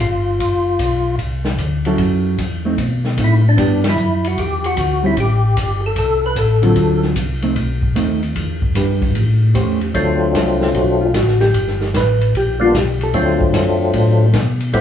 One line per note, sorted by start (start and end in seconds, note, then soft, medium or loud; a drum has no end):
0.00 0.38 G1 medium
0.00 1.16 F4 medium
0.00 kick soft
0.00 hi-hat pedal soft
0.00 ride medium
0.40 0.78 F#1 medium
0.40 kick soft
0.40 ride medium
0.79 1.18 B1 medium
0.79 kick soft
0.79 hi-hat pedal medium
0.79 ride medium
1.19 1.58 C2 medium
1.19 kick soft
1.19 ride soft
1.45 snare medium
1.58 1.97 D2 medium
1.58 kick soft
1.58 hi-hat pedal medium
1.58 ride medium
1.85 2.36 F#3 medium
1.85 2.36 C#4 medium
1.85 2.37 E4 medium
1.85 2.37 A4 medium
1.85 ride soft
1.98 2.37 F#2 medium
1.98 kick soft
1.98 ride medium
2.38 2.77 E2 medium
2.38 kick soft
2.38 hi-hat pedal medium
2.38 ride medium
2.65 2.77 A3 medium
2.65 2.78 C4 medium
2.65 2.78 D#4 medium
2.78 3.17 B2 medium
2.78 kick soft
2.78 ride medium
3.05 snare soft
3.18 3.56 A2 medium
3.18 3.42 A3 soft
3.18 3.43 C4 medium
3.18 3.43 D#4 medium
3.18 kick soft
3.18 hi-hat pedal medium
3.18 ride medium
3.24 3.35 E4 medium
3.49 3.84 D4 medium
3.57 3.96 G2 medium
3.57 3.81 E3 medium
3.57 3.81 B3 medium
3.57 3.82 D4 medium
3.57 3.82 G4 medium
3.57 kick soft
3.57 ride medium
3.84 snare medium
3.84 ride medium
3.89 4.27 E4 medium
3.97 4.36 F#2 medium
3.97 hi-hat pedal soft
4.24 4.39 F#4 medium
4.24 ride soft
4.37 4.76 E2 medium
4.37 4.66 G4 medium
4.37 kick soft
4.37 ride medium
4.64 5.06 F#4 medium
4.64 ride soft
4.77 5.16 D2 medium
4.77 kick soft
4.77 hi-hat pedal medium
4.77 ride medium
5.03 5.15 G3 medium
5.03 5.16 C4 medium
5.03 5.16 C#4 medium
5.03 5.19 E4 medium
5.17 5.56 A1 medium
5.17 5.81 G4 medium
5.17 kick soft
5.17 ride medium
5.57 5.95 G1 medium
5.57 kick soft
5.57 hi-hat pedal medium
5.57 ride medium
5.86 5.92 A4 medium
5.96 6.35 C2 medium
5.96 6.25 A4 medium
5.96 kick soft
5.96 ride medium
6.26 6.37 B4 medium
6.36 6.75 A1 medium
6.36 7.00 A4 medium
6.36 kick soft
6.36 hi-hat pedal medium
6.36 ride medium
6.62 7.13 D3 medium
6.62 7.14 F#3 medium
6.62 7.14 C4 medium
6.62 7.14 F4 medium
6.62 ride soft
6.76 7.15 D2 medium
6.76 kick soft
6.76 ride medium
7.02 snare soft
7.16 7.55 C2 medium
7.16 kick soft
7.16 hi-hat pedal medium
7.16 ride medium
7.42 7.55 A3 soft
7.42 7.55 C4 medium
7.42 7.55 D#4 medium
7.42 ride soft
7.56 7.95 B1 medium
7.56 kick soft
7.56 ride medium
7.82 kick soft
7.96 8.35 D#2 medium
7.96 8.20 A3 medium
7.96 8.20 C4 medium
7.96 8.20 D#4 medium
7.96 kick soft
7.96 hi-hat pedal medium
7.96 ride medium
8.23 ride soft
8.36 8.74 E2 medium
8.36 kick soft
8.36 ride medium
8.62 kick soft
8.75 9.14 G2 medium
8.75 9.16 E3 medium
8.75 9.16 D4 soft
8.75 9.16 G4 medium
8.75 9.16 B4 medium
8.75 kick soft
8.75 hi-hat pedal medium
8.75 ride medium
9.02 kick medium
9.02 ride soft
9.15 9.54 A2 medium
9.15 kick soft
9.15 ride medium
9.54 9.94 E2 medium
9.54 9.79 A3 medium
9.54 9.79 C#4 medium
9.54 9.79 G4 medium
9.54 9.80 C5 medium
9.54 kick soft
9.54 hi-hat pedal soft
9.54 ride medium
9.81 ride soft
9.94 10.34 D2 medium
9.94 11.07 F#3 soft
9.94 11.07 A3 soft
9.94 11.07 C4 soft
9.94 11.07 D4 soft
9.94 11.07 F4 medium
9.94 kick soft
9.94 ride medium
10.34 10.74 C2 medium
10.34 10.73 A4 medium
10.34 kick soft
10.34 snare medium
10.34 hi-hat pedal medium
10.34 ride medium
10.61 snare medium
10.74 11.13 B1 medium
10.74 11.01 F#4 medium
10.74 kick soft
10.74 ride soft
11.01 11.14 F4 medium
11.14 11.53 A1 medium
11.14 11.40 F#4 medium
11.14 kick soft
11.14 snare medium
11.14 hi-hat pedal medium
11.14 ride medium
11.28 snare soft
11.41 11.78 G4 medium
11.41 snare soft
11.41 ride soft
11.54 11.93 G1 medium
11.54 kick soft
11.54 ride medium
11.67 snare soft
11.81 snare soft
11.94 12.33 A1 medium
11.94 12.33 B4 medium
11.94 kick soft
11.94 snare medium
11.94 hi-hat pedal medium
11.94 ride medium
12.21 ride soft
12.34 12.73 A#1 medium
12.34 12.62 G4 medium
12.34 kick soft
12.34 ride medium
12.59 12.72 G3 medium
12.59 12.73 A#3 medium
12.59 12.73 B3 medium
12.59 12.73 D4 medium
12.59 12.73 F4 medium
12.59 12.78 F4 medium
12.74 13.13 B1 medium
12.74 13.02 G4 medium
12.74 kick soft
12.74 snare medium
12.74 hi-hat pedal soft
12.74 ride medium
13.01 13.40 A4 medium
13.01 ride soft
13.14 13.53 D2 medium
13.14 14.26 F#3 medium
13.14 14.26 A3 medium
13.14 14.26 C4 medium
13.14 14.27 D4 medium
13.14 14.27 F4 medium
13.14 kick soft
13.14 ride medium
13.41 kick medium
13.54 13.93 F#2 medium
13.54 kick soft
13.54 snare medium
13.54 hi-hat pedal medium
13.54 ride medium
13.93 14.33 A2 medium
13.93 kick soft
13.93 ride medium
14.33 14.73 B2 medium
14.33 kick soft
14.33 snare medium
14.33 hi-hat pedal soft
14.33 ride medium
14.60 ride soft
14.73 14.81 A2 medium
14.73 14.81 G3 medium
14.73 14.81 A3 soft
14.73 14.81 B3 medium
14.73 14.81 C4 soft
14.73 14.81 E4 medium
14.73 14.81 C5 medium
14.73 kick soft
14.73 ride medium